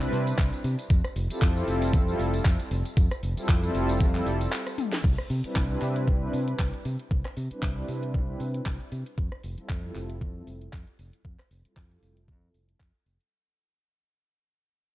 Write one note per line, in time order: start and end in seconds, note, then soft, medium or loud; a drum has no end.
0.01 0.12 G3 medium
0.01 0.12 C4 medium
0.01 0.12 D4 medium
0.01 0.13 E4 medium
0.01 0.13 B4 loud
0.01 clap soft
0.01 tambourine soft
0.13 0.32 C3 medium
0.13 open hi-hat loud
0.27 closed hi-hat medium
0.27 tambourine medium
0.38 0.49 C2 loud
0.38 kick loud
0.38 clap loud
0.38 closed hi-hat medium
0.38 tambourine medium
0.53 closed hi-hat soft
0.53 tambourine soft
0.64 0.75 C3 medium
0.64 open hi-hat medium
0.79 closed hi-hat medium
0.79 tambourine medium
0.90 1.01 F2 loud
0.90 kick loud
0.90 closed hi-hat medium
0.90 tambourine medium
1.04 cross-stick medium
1.04 tambourine soft
1.16 1.26 F1 medium
1.16 open hi-hat loud
1.30 1.41 G3 medium
1.30 1.42 C4 medium
1.30 1.42 E4 medium
1.30 1.42 F4 medium
1.30 1.42 A4 medium
1.30 muted fingered electric bass stroke soft
1.30 closed hi-hat medium
1.30 tambourine medium
1.42 1.61 F2 loud
1.42 kick loud
1.42 clap loud
1.42 closed hi-hat medium
1.42 tambourine medium
1.56 1.65 G3 loud
1.56 1.65 C4 medium
1.56 1.65 E4 medium
1.56 1.65 F4 medium
1.56 1.65 A4 loud
1.56 tambourine soft
1.67 1.95 F1 loud
1.67 1.82 G3 medium
1.67 1.82 C4 medium
1.67 1.82 E4 medium
1.67 1.82 F4 medium
1.67 1.82 A4 medium
1.67 open hi-hat medium
1.82 closed hi-hat medium
1.82 tambourine medium
1.93 2.13 F2 loud
1.93 kick loud
1.93 closed hi-hat medium
1.93 tambourine medium
2.07 2.19 G3 medium
2.07 2.19 C4 medium
2.07 2.19 E4 medium
2.07 2.19 F4 medium
2.07 2.19 A4 loud
2.07 tambourine soft
2.19 2.39 F1 medium
2.19 open hi-hat loud
2.34 closed hi-hat medium
2.34 tambourine medium
2.45 2.56 F2 medium
2.45 kick loud
2.45 clap loud
2.45 closed hi-hat medium
2.45 tambourine medium
2.60 closed hi-hat soft
2.60 tambourine soft
2.71 2.82 F1 loud
2.71 open hi-hat medium
2.85 closed hi-hat medium
2.85 tambourine medium
2.97 3.07 F2 loud
2.97 kick loud
2.97 closed hi-hat medium
2.97 tambourine medium
3.11 cross-stick medium
3.11 closed hi-hat soft
3.11 tambourine soft
3.23 3.33 F1 medium
3.23 open hi-hat loud
3.37 3.48 G3 medium
3.37 3.48 C4 medium
3.37 3.49 E4 medium
3.37 3.49 F4 medium
3.37 3.49 A4 medium
3.37 muted fingered electric bass stroke soft
3.37 closed hi-hat medium
3.37 tambourine medium
3.49 3.68 F2 loud
3.49 kick loud
3.49 clap loud
3.49 closed hi-hat medium
3.49 tambourine medium
3.62 3.72 G3 medium
3.62 3.72 C4 medium
3.62 3.72 E4 medium
3.62 3.72 F4 medium
3.62 3.72 A4 loud
3.62 closed hi-hat soft
3.62 tambourine soft
3.74 4.02 F1 loud
3.74 3.88 G3 medium
3.74 3.88 C4 medium
3.74 3.89 E4 medium
3.74 3.89 F4 medium
3.74 3.89 A4 medium
3.74 open hi-hat medium
3.89 closed hi-hat medium
3.89 tambourine medium
4.01 4.20 F2 medium
4.01 kick loud
4.01 closed hi-hat medium
4.01 tambourine medium
4.14 4.26 G3 medium
4.14 4.26 C4 medium
4.14 4.26 E4 medium
4.14 4.26 F4 medium
4.14 4.26 A4 loud
4.14 clap soft
4.14 closed hi-hat soft
4.14 tambourine soft
4.26 4.46 F1 medium
4.26 open hi-hat loud
4.41 closed hi-hat medium
4.41 tambourine medium
4.52 clap loud
4.52 closed hi-hat medium
4.52 tambourine medium
4.67 cross-stick medium
4.67 closed hi-hat soft
4.67 tambourine soft
4.78 open hi-hat medium
4.78 high tom medium
4.92 snare medium
4.92 closed hi-hat medium
4.92 tambourine medium
5.04 5.14 C2 medium
5.04 kick loud
5.04 closed hi-hat medium
5.04 crash medium
5.18 cross-stick medium
5.30 5.40 C3 medium
5.30 open hi-hat loud
5.44 5.55 G3 medium
5.44 5.55 C4 medium
5.44 5.55 D4 medium
5.44 5.56 E4 medium
5.44 5.56 B4 medium
5.44 muted fingered electric bass stroke soft
5.44 closed hi-hat medium
5.56 5.75 C2 loud
5.56 kick loud
5.56 clap loud
5.56 closed hi-hat medium
5.69 5.79 G3 medium
5.69 5.79 C4 medium
5.69 5.79 D4 medium
5.69 5.79 E4 medium
5.69 5.79 B4 loud
5.81 6.09 C3 medium
5.81 5.95 G3 medium
5.81 5.95 C4 medium
5.81 5.96 D4 medium
5.81 5.96 E4 medium
5.81 5.96 B4 medium
5.81 clap soft
5.81 open hi-hat medium
5.96 closed hi-hat medium
6.08 6.27 C2 medium
6.08 kick loud
6.08 closed hi-hat medium
6.21 6.33 G3 medium
6.21 6.33 C4 medium
6.21 6.33 D4 medium
6.21 6.33 E4 medium
6.21 6.33 B4 loud
6.33 6.53 C3 medium
6.33 open hi-hat loud
6.48 closed hi-hat medium
6.59 6.70 C2 medium
6.59 kick loud
6.59 clap loud
6.59 closed hi-hat medium
6.74 closed hi-hat soft
6.85 6.96 C3 medium
6.85 open hi-hat medium
6.99 closed hi-hat medium
7.11 7.21 C2 medium
7.11 kick loud
7.11 closed hi-hat medium
7.25 cross-stick medium
7.25 clap soft
7.37 7.47 C3 medium
7.37 open hi-hat loud
7.51 7.62 G3 medium
7.51 7.62 C4 medium
7.51 7.62 D4 medium
7.51 7.62 E4 medium
7.51 7.63 B4 medium
7.51 muted fingered electric bass stroke soft
7.51 closed hi-hat soft
7.63 7.82 C2 loud
7.63 kick loud
7.63 clap loud
7.63 closed hi-hat medium
7.76 7.85 G3 medium
7.76 7.86 C4 medium
7.76 7.86 D4 medium
7.76 7.86 E4 medium
7.76 7.86 B4 loud
7.88 8.16 C3 medium
7.88 8.02 G3 medium
7.88 8.02 C4 medium
7.88 8.02 D4 medium
7.88 8.03 E4 medium
7.88 8.03 B4 medium
7.88 open hi-hat medium
8.03 closed hi-hat medium
8.14 8.34 C2 medium
8.14 kick loud
8.14 closed hi-hat medium
8.28 8.40 G3 medium
8.28 8.40 C4 medium
8.28 8.40 D4 medium
8.28 8.40 E4 medium
8.28 8.40 B4 loud
8.40 8.60 C3 medium
8.40 open hi-hat loud
8.54 closed hi-hat soft
8.66 8.76 C2 medium
8.66 kick loud
8.66 clap loud
8.66 closed hi-hat medium
8.80 closed hi-hat soft
8.92 9.02 C3 medium
8.92 open hi-hat medium
9.06 closed hi-hat soft
9.18 9.28 F2 medium
9.18 kick loud
9.18 closed hi-hat medium
9.32 cross-stick medium
9.43 9.54 F1 medium
9.43 open hi-hat loud
9.58 9.69 G3 medium
9.58 9.69 C4 medium
9.58 9.69 E4 medium
9.58 9.69 F4 medium
9.58 9.70 A4 medium
9.58 muted fingered electric bass stroke soft
9.58 closed hi-hat soft
9.69 9.89 F2 loud
9.69 kick loud
9.69 clap loud
9.69 closed hi-hat medium
9.84 9.92 G3 medium
9.84 9.93 C4 medium
9.84 9.93 E4 medium
9.84 9.93 F4 medium
9.84 9.93 A4 loud
9.95 10.23 F1 medium
9.95 10.09 G3 medium
9.95 10.09 C4 medium
9.95 10.09 E4 medium
9.95 10.10 F4 medium
9.95 10.10 A4 medium
9.95 clap soft
9.95 open hi-hat medium
10.10 closed hi-hat soft
10.21 10.41 F2 medium
10.21 kick loud
10.21 closed hi-hat medium
10.35 10.47 G3 medium
10.35 10.47 C4 medium
10.35 10.47 E4 medium
10.35 10.47 F4 medium
10.35 10.47 A4 loud
10.47 10.67 F1 medium
10.47 open hi-hat loud
10.61 closed hi-hat soft
10.73 10.83 F2 medium
10.73 kick loud
10.73 clap loud
10.73 closed hi-hat medium
10.87 closed hi-hat soft
10.99 11.09 F1 medium
10.99 open hi-hat medium
11.13 closed hi-hat soft
11.25 11.35 F2 medium
11.25 kick loud
11.25 closed hi-hat medium
11.39 cross-stick medium
11.39 clap soft
11.51 11.61 F1 medium
11.51 open hi-hat loud
11.65 11.76 G3 medium
11.65 11.76 C4 medium
11.65 11.76 E4 medium
11.65 11.76 F4 medium
11.65 11.77 A4 medium
11.65 closed hi-hat soft
11.76 11.96 F2 medium
11.76 kick medium
11.76 clap loud
11.76 closed hi-hat medium
11.91 11.99 G3 medium
11.91 12.00 C4 medium
11.91 12.00 E4 medium
11.91 12.00 F4 medium
11.91 12.00 A4 loud
11.91 closed hi-hat soft
12.02 12.30 F1 medium
12.02 12.16 G3 medium
12.02 12.16 C4 medium
12.02 12.16 E4 medium
12.02 12.17 F4 medium
12.02 12.17 A4 medium
12.02 open hi-hat medium
12.17 closed hi-hat soft
12.28 12.48 F2 medium
12.28 kick loud
12.28 closed hi-hat medium
12.42 12.54 G3 medium
12.42 12.54 C4 medium
12.42 12.54 E4 medium
12.42 12.54 F4 medium
12.42 12.54 A4 loud
12.54 12.74 F1 medium
12.54 open hi-hat loud
12.69 closed hi-hat soft
12.80 12.90 F2 medium
12.80 kick loud
12.80 clap loud
12.80 closed hi-hat medium
12.95 closed hi-hat soft
13.06 13.16 F1 medium
13.06 open hi-hat medium
13.20 closed hi-hat soft